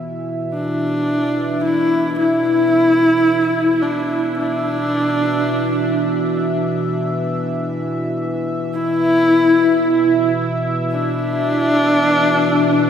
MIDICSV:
0, 0, Header, 1, 3, 480
1, 0, Start_track
1, 0, Tempo, 1090909
1, 8, Time_signature, 4, 2, 24, 8
1, 5676, End_track
2, 0, Start_track
2, 0, Title_t, "Horsehead fiddle"
2, 0, Program_c, 0, 110
2, 237, Note_on_c, 0, 62, 93
2, 705, Note_off_c, 0, 62, 0
2, 722, Note_on_c, 0, 64, 91
2, 948, Note_off_c, 0, 64, 0
2, 963, Note_on_c, 0, 64, 110
2, 1683, Note_on_c, 0, 62, 87
2, 1689, Note_off_c, 0, 64, 0
2, 1922, Note_off_c, 0, 62, 0
2, 1925, Note_on_c, 0, 62, 106
2, 2869, Note_off_c, 0, 62, 0
2, 3844, Note_on_c, 0, 64, 118
2, 4549, Note_off_c, 0, 64, 0
2, 4801, Note_on_c, 0, 62, 113
2, 5676, Note_off_c, 0, 62, 0
2, 5676, End_track
3, 0, Start_track
3, 0, Title_t, "Analog synth pad"
3, 0, Program_c, 1, 89
3, 0, Note_on_c, 1, 47, 82
3, 0, Note_on_c, 1, 52, 79
3, 0, Note_on_c, 1, 76, 85
3, 5676, Note_off_c, 1, 47, 0
3, 5676, Note_off_c, 1, 52, 0
3, 5676, Note_off_c, 1, 76, 0
3, 5676, End_track
0, 0, End_of_file